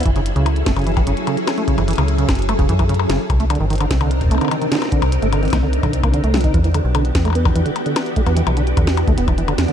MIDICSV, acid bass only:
0, 0, Header, 1, 2, 480
1, 0, Start_track
1, 0, Tempo, 405405
1, 66, Time_signature, 4, 2, 24, 8
1, 11516, End_track
2, 0, Start_track
2, 0, Title_t, "Acid bass"
2, 0, Program_c, 0, 38
2, 65, Note_on_c, 0, 52, 78
2, 127, Note_off_c, 0, 52, 0
2, 186, Note_on_c, 0, 49, 97
2, 247, Note_off_c, 0, 49, 0
2, 426, Note_on_c, 0, 49, 75
2, 540, Note_off_c, 0, 49, 0
2, 786, Note_on_c, 0, 57, 73
2, 847, Note_off_c, 0, 57, 0
2, 906, Note_on_c, 0, 49, 75
2, 1008, Note_off_c, 0, 49, 0
2, 1026, Note_on_c, 0, 52, 81
2, 1087, Note_off_c, 0, 52, 0
2, 1146, Note_on_c, 0, 52, 80
2, 1207, Note_off_c, 0, 52, 0
2, 1266, Note_on_c, 0, 49, 99
2, 1328, Note_off_c, 0, 49, 0
2, 1506, Note_on_c, 0, 49, 83
2, 1620, Note_off_c, 0, 49, 0
2, 1866, Note_on_c, 0, 57, 81
2, 1928, Note_off_c, 0, 57, 0
2, 1986, Note_on_c, 0, 49, 78
2, 2088, Note_off_c, 0, 49, 0
2, 2105, Note_on_c, 0, 52, 74
2, 2167, Note_off_c, 0, 52, 0
2, 2225, Note_on_c, 0, 52, 77
2, 2287, Note_off_c, 0, 52, 0
2, 2345, Note_on_c, 0, 49, 100
2, 2407, Note_off_c, 0, 49, 0
2, 2585, Note_on_c, 0, 49, 76
2, 2700, Note_off_c, 0, 49, 0
2, 2945, Note_on_c, 0, 57, 84
2, 3007, Note_off_c, 0, 57, 0
2, 3065, Note_on_c, 0, 49, 81
2, 3168, Note_off_c, 0, 49, 0
2, 3185, Note_on_c, 0, 52, 81
2, 3247, Note_off_c, 0, 52, 0
2, 3305, Note_on_c, 0, 52, 77
2, 3367, Note_off_c, 0, 52, 0
2, 3425, Note_on_c, 0, 49, 100
2, 3487, Note_off_c, 0, 49, 0
2, 3665, Note_on_c, 0, 49, 76
2, 3779, Note_off_c, 0, 49, 0
2, 4025, Note_on_c, 0, 57, 76
2, 4087, Note_off_c, 0, 57, 0
2, 4146, Note_on_c, 0, 50, 81
2, 4248, Note_off_c, 0, 50, 0
2, 4266, Note_on_c, 0, 51, 75
2, 4327, Note_off_c, 0, 51, 0
2, 4386, Note_on_c, 0, 51, 87
2, 4447, Note_off_c, 0, 51, 0
2, 4506, Note_on_c, 0, 50, 102
2, 4567, Note_off_c, 0, 50, 0
2, 4746, Note_on_c, 0, 50, 73
2, 4860, Note_off_c, 0, 50, 0
2, 5106, Note_on_c, 0, 57, 77
2, 5167, Note_off_c, 0, 57, 0
2, 5226, Note_on_c, 0, 50, 76
2, 5328, Note_off_c, 0, 50, 0
2, 5346, Note_on_c, 0, 51, 81
2, 5407, Note_off_c, 0, 51, 0
2, 5465, Note_on_c, 0, 51, 75
2, 5527, Note_off_c, 0, 51, 0
2, 5585, Note_on_c, 0, 50, 109
2, 5647, Note_off_c, 0, 50, 0
2, 5825, Note_on_c, 0, 50, 78
2, 5939, Note_off_c, 0, 50, 0
2, 6185, Note_on_c, 0, 57, 72
2, 6247, Note_off_c, 0, 57, 0
2, 6305, Note_on_c, 0, 50, 82
2, 6408, Note_off_c, 0, 50, 0
2, 6425, Note_on_c, 0, 51, 74
2, 6487, Note_off_c, 0, 51, 0
2, 6545, Note_on_c, 0, 51, 71
2, 6607, Note_off_c, 0, 51, 0
2, 6665, Note_on_c, 0, 50, 99
2, 6727, Note_off_c, 0, 50, 0
2, 6905, Note_on_c, 0, 50, 79
2, 7019, Note_off_c, 0, 50, 0
2, 7145, Note_on_c, 0, 58, 76
2, 7207, Note_off_c, 0, 58, 0
2, 7265, Note_on_c, 0, 50, 101
2, 7368, Note_off_c, 0, 50, 0
2, 7385, Note_on_c, 0, 57, 75
2, 7505, Note_on_c, 0, 53, 76
2, 7523, Note_off_c, 0, 57, 0
2, 7620, Note_off_c, 0, 53, 0
2, 7625, Note_on_c, 0, 63, 77
2, 7728, Note_off_c, 0, 63, 0
2, 7745, Note_on_c, 0, 52, 78
2, 7807, Note_off_c, 0, 52, 0
2, 7865, Note_on_c, 0, 52, 75
2, 7927, Note_off_c, 0, 52, 0
2, 7985, Note_on_c, 0, 50, 101
2, 8047, Note_off_c, 0, 50, 0
2, 8225, Note_on_c, 0, 50, 86
2, 8340, Note_off_c, 0, 50, 0
2, 8586, Note_on_c, 0, 57, 75
2, 8647, Note_off_c, 0, 57, 0
2, 8705, Note_on_c, 0, 59, 102
2, 8819, Note_off_c, 0, 59, 0
2, 8825, Note_on_c, 0, 52, 80
2, 8887, Note_off_c, 0, 52, 0
2, 8945, Note_on_c, 0, 52, 79
2, 9007, Note_off_c, 0, 52, 0
2, 9065, Note_on_c, 0, 50, 103
2, 9127, Note_off_c, 0, 50, 0
2, 9305, Note_on_c, 0, 50, 74
2, 9419, Note_off_c, 0, 50, 0
2, 9665, Note_on_c, 0, 57, 82
2, 9727, Note_off_c, 0, 57, 0
2, 9785, Note_on_c, 0, 59, 100
2, 9899, Note_off_c, 0, 59, 0
2, 9905, Note_on_c, 0, 52, 76
2, 9967, Note_off_c, 0, 52, 0
2, 10025, Note_on_c, 0, 52, 72
2, 10087, Note_off_c, 0, 52, 0
2, 10145, Note_on_c, 0, 50, 100
2, 10207, Note_off_c, 0, 50, 0
2, 10385, Note_on_c, 0, 50, 75
2, 10499, Note_off_c, 0, 50, 0
2, 10745, Note_on_c, 0, 57, 81
2, 10807, Note_off_c, 0, 57, 0
2, 10865, Note_on_c, 0, 59, 106
2, 10979, Note_off_c, 0, 59, 0
2, 10986, Note_on_c, 0, 52, 73
2, 11047, Note_off_c, 0, 52, 0
2, 11106, Note_on_c, 0, 52, 82
2, 11167, Note_off_c, 0, 52, 0
2, 11225, Note_on_c, 0, 50, 105
2, 11287, Note_off_c, 0, 50, 0
2, 11466, Note_on_c, 0, 50, 78
2, 11516, Note_off_c, 0, 50, 0
2, 11516, End_track
0, 0, End_of_file